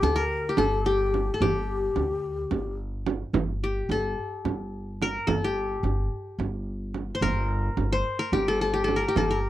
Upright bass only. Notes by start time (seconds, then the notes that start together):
0.02 D2
0.58 G1
1.41 G1
1.96 D2
2.51 G1
3.33 G1
3.89 G1
4.45 G1
5.28 G1
5.83 G1
6.39 G1
7.21 G1
7.77 G1
8.32 G1
9.16 G1